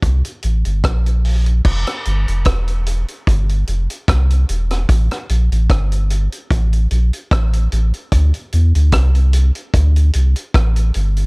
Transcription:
0.02 sub bass C2, kick, closed hi-hat
0.25 closed hi-hat
0.43 sub bass A1, closed hi-hat
0.65 sub bass G1, closed hi-hat
0.84 sub bass A#1, kick, cross-stick, closed hi-hat
1.06 closed hi-hat
1.25 open hi-hat
1.46 closed hi-hat
1.65 sub bass F1, kick, crash
1.87 cross-stick, closed hi-hat
2.05 sub bass G1, closed hi-hat
2.28 sub bass F1, closed hi-hat
2.45 sub bass E1, kick, cross-stick, closed hi-hat
2.68 closed hi-hat
2.87 closed hi-hat
3.08 closed hi-hat
3.27 sub bass G1, kick, closed hi-hat
3.49 closed hi-hat
3.67 sub bass F1, closed hi-hat
3.90 closed hi-hat
4.08 sub bass C2, kick, cross-stick, closed hi-hat
4.30 closed hi-hat
4.49 sub bass E1, closed hi-hat
4.71 cross-stick, closed hi-hat
4.89 sub bass A1, kick, closed hi-hat
5.11 cross-stick, closed hi-hat
5.29 sub bass A#1, closed hi-hat
5.52 sub bass A1, closed hi-hat
5.70 sub bass G1, kick, cross-stick, closed hi-hat
5.92 closed hi-hat
6.10 closed hi-hat
6.32 closed hi-hat
6.51 sub bass A1, kick, closed hi-hat
6.73 closed hi-hat
6.91 sub bass A#1, closed hi-hat
7.13 closed hi-hat
7.31 sub bass A1, kick, cross-stick, closed hi-hat
7.53 closed hi-hat
7.72 sub bass A1, closed hi-hat
7.94 closed hi-hat
8.12 sub bass D2, kick, closed hi-hat
8.34 closed hi-hat
8.53 sub bass E2, closed hi-hat
8.75 sub bass D2, closed hi-hat
8.92 sub bass C2, kick, cross-stick, closed hi-hat
9.15 closed hi-hat
9.33 closed hi-hat
9.55 closed hi-hat
9.74 sub bass D2, kick, closed hi-hat
9.96 closed hi-hat
10.13 sub bass C2, closed hi-hat
10.36 closed hi-hat
10.54 sub bass A1, kick, cross-stick, closed hi-hat
10.76 closed hi-hat
10.94 sub bass G1, closed hi-hat
11.17 closed hi-hat

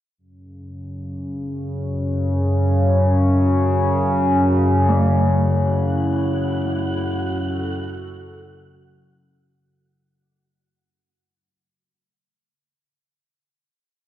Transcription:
0.18 synth drone F#2 C#3
4.88 bronze metallophone A3, analog synth pad E4, synth texture F#4 F#5
7.00 analog synth pad F#4 A4

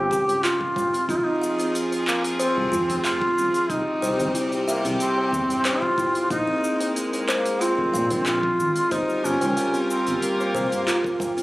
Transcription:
Already playing: analog synth bass G1, duduk G4
0.11 analog synth bass C#2, kalimba G4, kick, cabasa
0.28 open hi-hat, tabla tin, tabla ge, cabasa
0.44 duduk F4, kalimba F4, clap, open hi-hat, cabasa
0.61 kick
0.76 kalimba F5, kick, tabla na, tabla ge, cabasa
0.94 kalimba C4, open hi-hat, cabasa
1.09 analog synth bass F1, string section F3 C4 F4 G#4, duduk D#4, kalimba F4, kick, open hi-hat, cabasa
1.16 duduk F4
1.23 duduk D#4
1.42 kalimba F5, cabasa
1.59 kalimba C4, open hi-hat, tabla tin, cabasa
1.75 open hi-hat, cabasa
1.91 open hi-hat, tabla tin
2.07 duduk A#3, clap, cabasa
2.24 open hi-hat, cabasa
2.40 duduk C4, kalimba C5, open hi-hat, cabasa
2.57 analog synth bass C2
2.72 analog synth bass F2, kalimba F4, tabla ge, cabasa
2.89 analog synth bass F1, open hi-hat, tabla tin, cabasa
3.04 duduk F4, kalimba F5, clap, open hi-hat, cabasa
3.21 kalimba C4, kick
3.38 analog synth bass D#1, cabasa
3.54 open hi-hat, cabasa
3.70 analog synth bass C2, string section C3 G3 G4, duduk D#4, kick, open hi-hat, cabasa
4.02 analog synth bass C2, kalimba C5, cabasa
4.19 analog synth bass G1, open hi-hat, tabla na, tabla tin, cabasa
4.35 kalimba E4, open hi-hat, cabasa
4.52 open hi-hat, tabla tin
4.68 duduk A#3, kalimba E5, cabasa
4.85 analog synth bass C2, kalimba C4, open hi-hat, cabasa
5.00 duduk C4, open hi-hat, cabasa
5.18 tabla na
5.32 analog synth bass E2, kick, cabasa
5.50 open hi-hat, tabla tin, tabla ge, cabasa
5.65 duduk F4, kalimba C5, clap, open hi-hat, cabasa
5.82 kick
5.98 kalimba E4, kick, tabla na, tabla ge, cabasa
6.15 open hi-hat, cabasa
6.30 analog synth bass A#1, string section G#3 A#3, duduk D#4, kalimba F5, kick, open hi-hat, cabasa
6.47 kalimba C4
6.64 cabasa
6.80 open hi-hat, tabla tin, cabasa
6.96 open hi-hat, cabasa
7.13 open hi-hat, tabla tin
7.29 duduk A#3, kalimba C5, clap, cabasa
7.46 open hi-hat, cabasa
7.61 duduk C4, kalimba F4, open hi-hat, cabasa
7.78 analog synth bass F1
7.94 analog synth bass A#2, kalimba F5, tabla ge, cabasa
8.10 analog synth bass A#1, kalimba C4, open hi-hat, tabla tin, cabasa
8.26 duduk F4, clap, open hi-hat, cabasa
8.43 kick
8.59 analog synth bass G#1, cabasa
8.76 open hi-hat, cabasa
8.91 analog synth bass G1, string section G3 F4 G4 A#4, duduk D#4, kalimba C5, kick, open hi-hat, cabasa
9.09 cabasa
9.24 analog synth bass G1, duduk C#4, kalimba F4, cabasa
9.41 analog synth bass C#2, open hi-hat, tabla na, tabla tin, cabasa
9.57 kalimba F5, open hi-hat, cabasa
9.74 kalimba C4, open hi-hat, tabla tin, cabasa
9.89 duduk C4, cabasa
10.07 analog synth bass G1, open hi-hat, cabasa
10.22 duduk A#3, open hi-hat, cabasa
10.40 tabla na, cabasa
10.55 analog synth bass C2, kalimba C5, kick, tabla na, cabasa
10.71 open hi-hat, tabla tin, tabla ge, cabasa
10.87 kalimba F4, clap, open hi-hat, cabasa
11.04 kick, cabasa
11.20 kalimba F5, kick, tabla na, tabla ge, cabasa
11.37 kalimba C4, open hi-hat, cabasa

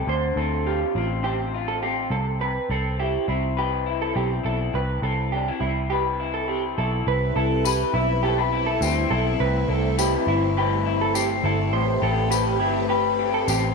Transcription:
Already playing: clean electric guitar C4 G4 B4
0.07 picked electric bass D2, clean electric guitar D3 C5
0.36 picked electric bass D2, clean electric guitar C4 A4
0.67 clean electric guitar F4 G4
0.95 picked electric bass A1, clean electric guitar C4 F4
1.24 clean electric guitar G4 C5
1.54 clean electric guitar F4
1.68 clean electric guitar A4
1.82 clean electric guitar C4 G4
2.10 picked electric bass C2, clean electric guitar C3 A4
2.41 clean electric guitar C3 B4
2.70 picked electric bass C2, clean electric guitar C4 A4
2.99 clean electric guitar E4 G4
3.28 picked electric bass C2, clean electric guitar C4 E4
3.57 clean electric guitar G4 B4
3.86 clean electric guitar E4
4.02 clean electric guitar A4
4.15 picked electric bass B1, clean electric guitar C4 G4
4.43 picked electric bass B1, clean electric guitar E4 A4
4.74 picked electric bass C2, clean electric guitar C3 B4
5.02 picked electric bass C2, clean electric guitar C4 A4
5.32 clean electric guitar D4 G4
5.48 clean electric guitar E4
5.61 picked electric bass C2, clean electric guitar C4 E4
5.90 clean electric guitar G4 B4
6.20 clean electric guitar E4
6.34 clean electric guitar A4
6.48 clean electric guitar C4 G4
6.78 picked electric bass B1, clean electric guitar E4 A4
7.07 picked electric bass C2, string machine G3 C4 E4 B4, clean electric guitar B4
7.36 picked electric bass C2, clean electric guitar E4 A4
7.65 clean electric guitar G4 B4, tambourine
7.94 picked electric bass B1, clean electric guitar E4
8.23 clean electric guitar G4 A4
8.38 clean electric guitar B4
8.53 clean electric guitar E4
8.66 clean electric guitar A4
8.81 picked electric bass D2, clean electric guitar C4 G4, tambourine
9.11 picked electric bass B1, clean electric guitar E4 A4
9.40 picked electric bass C2, clean electric guitar C3 B4, string machine A3
9.68 picked electric bass C2, clean electric guitar E4 A4
9.98 clean electric guitar G4 B4, tambourine
10.27 picked electric bass G1, clean electric guitar E4
10.57 clean electric guitar G4 B4
10.86 clean electric guitar E4
11.01 clean electric guitar A4
11.15 clean electric guitar C4 G4, tambourine
11.44 picked electric bass G1, clean electric guitar E4 A4
11.73 picked electric bass A1, clean electric guitar A2 C5, string machine C4 G4 B4
12.02 picked electric bass A1, clean electric guitar G4 A4
12.31 clean electric guitar G4 B4, tambourine
12.60 picked electric bass G1, clean electric guitar E4 G4
12.89 clean electric guitar G4 B4
13.19 clean electric guitar G4
13.34 clean electric guitar A4
13.47 picked electric bass A1, clean electric guitar C4 G4, tambourine

